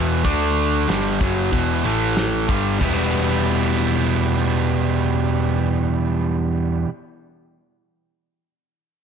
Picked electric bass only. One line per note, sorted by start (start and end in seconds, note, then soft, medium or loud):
0.00 0.22 E1 medium
0.24 0.84 D2 medium
0.89 1.19 G1 medium
1.21 1.51 F#1 medium
1.53 1.82 E1 medium
1.84 2.45 A1 medium
2.48 2.79 G1 medium
2.81 6.84 E1 medium